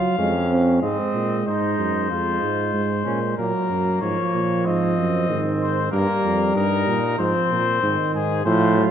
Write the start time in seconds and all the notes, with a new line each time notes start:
Already playing: F#3 F4 F5
0.18 F2 G#3 C#4
0.51 C4
0.82 G#2 G#3 C4 D#5
1.15 A#2
1.47 G#2 D#4 C5
1.79 F#2
2.10 F2 G#3 F4
2.42 G#2
2.74 G#2
3.06 A#2 C#4
3.38 A#2 F#3 A#3 A#4
3.70 F#2
4.01 G#2 F3 C#5
4.34 A#2
4.65 G#2 C4 D#5
4.98 F#2
5.29 G#2 D#3
5.61 C5
5.92 G2 G3 A#3 A#4
6.25 F2
6.55 G2 D#4 A#4
6.87 A#2
7.18 G#2 F3 C4 C5
7.51 A#2
7.82 G#2 D#3
8.14 G#2 G#4
8.45 A2 F3 F4 C5
8.77 F#3